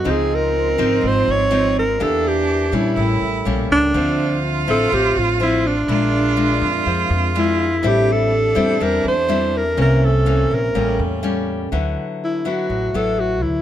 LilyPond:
<<
  \new Staff \with { instrumentName = "Vibraphone" } { \time 4/4 \key a \phrygian \tempo 4 = 123 <f' ees'' c'''>1 | <d' g' bes' e''>2 <cis' a' bes' g''>2 | <d' c'' e''>1 | <d' aes' bes' e''>1 |
<c' g' a' e''>1 | <bes des' c'' e''>2 <cis' a' bes' g''>2 | \key d \major r1 | }
  \new Staff \with { instrumentName = "Alto saxophone" } { \time 4/4 \key a \phrygian aes'8 bes'4. c''8 des''4 bes'8 | a'8 g'4 e'4 r4 d'8~ | d'4 r8 a'8 g'8 f'8 e'8 d'8~ | d'2~ d'8 r8 e'4 |
g'8 a'4. bes'8 c''4 bes'8 | bes'8 a'4 bes'4 r4. | \key d \major r4 e'8 fis'4 a'8 fis'8 e'8 | }
  \new Staff \with { instrumentName = "Cello" } { \time 4/4 \key a \phrygian c'1 | d'2 e'4. r8 | f'1 | f'1 |
d'1 | des'2 cis'4. r8 | \key d \major r1 | }
  \new Staff \with { instrumentName = "Nylon-string guitar" } { \time 4/4 \key a \phrygian << { <f c' ees'>4. <f c' ees'>4. <f c' ees'>8 r8 | <bes d' g'>4 r8 <g des'>4. <g bes cis'>4 | <f c'>4. <f c' e'>8 <f c'>4 <f c'>8 r8 | <aes d'>4 <aes d'>2 <aes d'>8 r8 |
<g c' e'>4 r8 <g c' e'>8 <g c' e'>8 r8 <g c' e'>8 r8 | <e bes des'>8 r8 <e bes des'>8 r8 <g bes cis'>4 <g bes cis'>4 | \key d \major <fis b e'>4. <fis b e'>4 <fis b e'>4. | } \\ { des2 aes,2 | e2 a,2 | d2 a,2 | bes,2 f2 |
a,2 e2 | c2 a,2 | d2 a,2 | } >> }
  \new Staff \with { instrumentName = "Upright bass" } { \clef bass \time 4/4 \key a \phrygian des,4. aes,,8 aes,,8 aes,,4. | e,4. bes,8 a,,8 a,,8 bes,,8 cis,8 | d,4. a,,8 a,,8 a,,4. | bes,,4. f,8 f,8 f,4. |
a,,4. e,8 e,8 e,4. | c,4. bes,,8 a,,8 e,4. | \key d \major d,8 r4. a,,8 a,,4 d,8 | }
>>